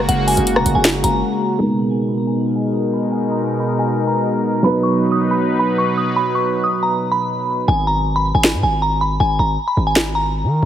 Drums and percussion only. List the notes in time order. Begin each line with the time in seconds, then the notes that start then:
0.09 closed hi-hat
0.28 closed hi-hat, open hi-hat
0.37 closed hi-hat
0.47 closed hi-hat
0.56 cross-stick
0.66 closed hi-hat
0.85 snare, closed hi-hat
1.04 closed hi-hat
8.44 snare
9.96 snare